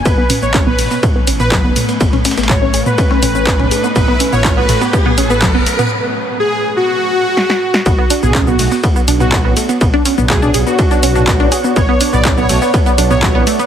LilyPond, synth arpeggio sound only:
\new Staff \with { instrumentName = "Synth arpeggio sound" } { \time 4/4 \key b \minor \tempo 4 = 123 b16 b16 cis'16 b16 cis'16 b16 a16 b16 b16 b16 cis'16 b16 fis16 b16 a16 b16 | b16 cis'16 cis'16 b16 fis16 cis'16 gis'16 b16 cis'16 cis'16 cis'16 cis'16 b16 cis'16 gis'16 b16 | b16 b16 cis'16 b16 cis'16 b16 a16 b16 b16 b16 cis'16 b16 fis16 b16 a16 b16 | r1 |
b16 b16 d'16 b16 cis'16 b16 a16 b16 b16 b16 d'16 b16 fis16 b16 a16 b16 | b16 d'16 cis'16 b16 fis16 d'16 gis'16 b16 d'16 d'16 cis'16 d'16 b16 d'16 gis'16 b16 | b16 b16 d'16 b16 cis'16 b16 a16 b16 b16 b16 d'16 b16 fis16 b16 a16 b16 | }